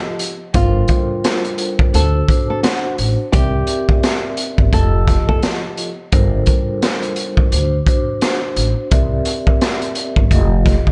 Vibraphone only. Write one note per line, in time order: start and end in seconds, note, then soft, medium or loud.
0.00 0.28 F3 medium
0.00 0.28 F4 medium
0.00 0.29 G4 medium
0.00 0.29 A4 medium
0.00 0.29 D#5 loud
0.53 1.93 G3 medium
0.53 1.92 D4 medium
0.53 1.94 F4 medium
0.53 1.94 A4 medium
0.53 1.94 A#4 medium
0.53 1.93 C5 loud
1.93 2.16 D4 medium
1.93 2.17 F#4 medium
1.93 2.17 C5 loud
2.28 3.26 D4 medium
2.28 3.27 F#4 medium
2.28 3.27 C5 loud
3.32 4.72 C4 medium
3.32 4.72 G4 medium
3.32 4.72 A#4 medium
3.32 4.73 D5 medium
3.32 4.73 E5 loud
4.72 5.86 F3 medium
4.72 5.87 F4 medium
4.72 5.87 G4 medium
4.72 5.87 A4 medium
4.72 5.87 D#5 loud
6.12 7.52 G3 medium
6.12 7.50 D4 medium
6.12 7.52 F4 medium
6.12 7.52 A4 medium
6.12 7.52 A#4 medium
6.12 7.51 C5 loud
7.51 7.74 D4 medium
7.51 7.75 F#4 medium
7.51 7.75 C5 loud
7.86 8.84 D4 medium
7.86 8.85 F#4 medium
7.86 8.85 C5 loud
8.90 10.30 C4 medium
8.90 10.30 G4 medium
8.90 10.31 A#4 medium
8.90 10.31 D5 medium
8.90 10.31 E5 loud
10.30 10.92 F3 medium
10.30 10.92 F4 medium
10.30 10.92 G4 medium
10.30 10.92 A4 medium
10.30 10.92 D#5 loud